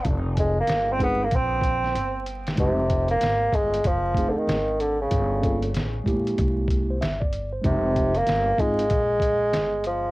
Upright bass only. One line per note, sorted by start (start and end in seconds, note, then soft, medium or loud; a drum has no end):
0.05 0.65 F1 loud
0.68 1.28 G1 medium
1.32 1.92 A#1 loud
1.95 2.55 G1 medium
2.58 3.18 F1 loud
3.21 3.51 G#1 medium
3.53 3.83 G1 medium
3.85 4.34 F#1 medium
4.36 muted upright bass stroke soft
4.47 5.08 G#1 medium
5.11 5.71 G1 loud
5.74 6.04 A1 medium
6.06 6.36 A#1 medium
6.38 6.98 C2 loud
7.01 7.61 G1 medium
7.64 8.24 F1 loud
8.27 8.57 G1 medium
8.58 8.88 G#1 medium
8.91 9.50 A#1 loud
9.53 10.11 G1 medium